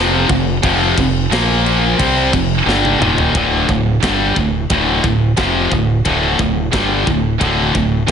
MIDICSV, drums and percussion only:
0, 0, Header, 1, 2, 480
1, 0, Start_track
1, 0, Tempo, 677966
1, 449, Time_signature, 4, 2, 24, 8
1, 5745, End_track
2, 0, Start_track
2, 0, Title_t, "Drums"
2, 208, Note_on_c, 9, 49, 62
2, 209, Note_on_c, 9, 36, 103
2, 279, Note_off_c, 9, 49, 0
2, 280, Note_off_c, 9, 36, 0
2, 448, Note_on_c, 9, 49, 85
2, 449, Note_on_c, 9, 36, 116
2, 519, Note_off_c, 9, 49, 0
2, 520, Note_off_c, 9, 36, 0
2, 691, Note_on_c, 9, 36, 94
2, 693, Note_on_c, 9, 49, 75
2, 762, Note_off_c, 9, 36, 0
2, 764, Note_off_c, 9, 49, 0
2, 936, Note_on_c, 9, 49, 83
2, 942, Note_on_c, 9, 38, 108
2, 1007, Note_off_c, 9, 49, 0
2, 1013, Note_off_c, 9, 38, 0
2, 1177, Note_on_c, 9, 49, 61
2, 1247, Note_off_c, 9, 49, 0
2, 1413, Note_on_c, 9, 36, 116
2, 1416, Note_on_c, 9, 49, 88
2, 1483, Note_off_c, 9, 36, 0
2, 1487, Note_off_c, 9, 49, 0
2, 1652, Note_on_c, 9, 36, 86
2, 1652, Note_on_c, 9, 49, 71
2, 1723, Note_off_c, 9, 36, 0
2, 1723, Note_off_c, 9, 49, 0
2, 1904, Note_on_c, 9, 38, 68
2, 1975, Note_off_c, 9, 38, 0
2, 2018, Note_on_c, 9, 48, 61
2, 2089, Note_off_c, 9, 48, 0
2, 2137, Note_on_c, 9, 45, 99
2, 2207, Note_off_c, 9, 45, 0
2, 2253, Note_on_c, 9, 43, 103
2, 2324, Note_off_c, 9, 43, 0
2, 2371, Note_on_c, 9, 36, 110
2, 2372, Note_on_c, 9, 53, 69
2, 2442, Note_off_c, 9, 36, 0
2, 2443, Note_off_c, 9, 53, 0
2, 2611, Note_on_c, 9, 36, 91
2, 2682, Note_off_c, 9, 36, 0
2, 2851, Note_on_c, 9, 36, 112
2, 2853, Note_on_c, 9, 53, 66
2, 2860, Note_on_c, 9, 38, 116
2, 2922, Note_off_c, 9, 36, 0
2, 2924, Note_off_c, 9, 53, 0
2, 2930, Note_off_c, 9, 38, 0
2, 3089, Note_on_c, 9, 36, 85
2, 3160, Note_off_c, 9, 36, 0
2, 3327, Note_on_c, 9, 53, 67
2, 3329, Note_on_c, 9, 36, 127
2, 3398, Note_off_c, 9, 53, 0
2, 3400, Note_off_c, 9, 36, 0
2, 3568, Note_on_c, 9, 36, 88
2, 3638, Note_off_c, 9, 36, 0
2, 3802, Note_on_c, 9, 53, 65
2, 3807, Note_on_c, 9, 36, 104
2, 3808, Note_on_c, 9, 38, 102
2, 3873, Note_off_c, 9, 53, 0
2, 3878, Note_off_c, 9, 36, 0
2, 3879, Note_off_c, 9, 38, 0
2, 4047, Note_on_c, 9, 36, 92
2, 4118, Note_off_c, 9, 36, 0
2, 4285, Note_on_c, 9, 53, 79
2, 4288, Note_on_c, 9, 36, 106
2, 4356, Note_off_c, 9, 53, 0
2, 4359, Note_off_c, 9, 36, 0
2, 4526, Note_on_c, 9, 36, 93
2, 4597, Note_off_c, 9, 36, 0
2, 4764, Note_on_c, 9, 53, 68
2, 4766, Note_on_c, 9, 36, 103
2, 4771, Note_on_c, 9, 38, 107
2, 4835, Note_off_c, 9, 53, 0
2, 4837, Note_off_c, 9, 36, 0
2, 4841, Note_off_c, 9, 38, 0
2, 5006, Note_on_c, 9, 36, 86
2, 5077, Note_off_c, 9, 36, 0
2, 5246, Note_on_c, 9, 36, 117
2, 5247, Note_on_c, 9, 53, 73
2, 5317, Note_off_c, 9, 36, 0
2, 5318, Note_off_c, 9, 53, 0
2, 5487, Note_on_c, 9, 36, 85
2, 5557, Note_off_c, 9, 36, 0
2, 5745, End_track
0, 0, End_of_file